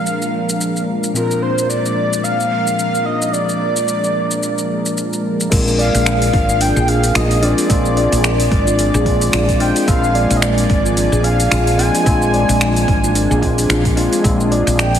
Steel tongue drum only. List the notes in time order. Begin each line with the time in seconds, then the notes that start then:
5.52 G#3
5.79 D5
6.33 D4
6.49 F4
6.61 D4
6.76 G#4
7.15 F4
7.43 D4
7.58 F4
7.70 G#3
7.97 D5
8.52 D4
8.67 F4
8.79 D4
8.95 G#4
9.33 F4
9.60 D4
9.76 F4
9.88 G#3
10.15 D5
10.69 D4
10.85 F4
10.97 D4
11.13 G#4
11.51 F4
11.79 D4
11.94 F4
12.06 G#3
12.34 D5
12.88 D4
13.04 F4
13.15 D4
13.31 G#4
13.70 F4
13.97 D4
14.13 F4
14.24 G#3
14.51 D5